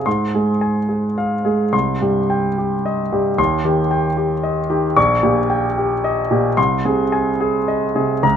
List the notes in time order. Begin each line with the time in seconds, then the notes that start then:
0.06 G#2 C6
0.34 G#3 G#4
0.61 G#5
0.89 G#4
1.18 F5
1.45 G#3 G#4
1.73 C2 C6
2.01 G2 G4
2.30 G5
2.58 G4
2.86 D#5
3.12 G2 G4
3.38 D#2 C6
3.64 D#3 G4
3.91 G5
4.17 G4
4.43 D#5
4.70 D#3 G4
4.96 A#1 C#6
5.23 A#2 G4
5.50 G5
5.78 G4
6.04 D#5
6.31 A#2 G4
6.57 C2 C6
6.85 C3 G#4
7.12 G#5
7.40 G#4
7.68 D#5
7.95 C3 G#4
8.23 C#2 A#5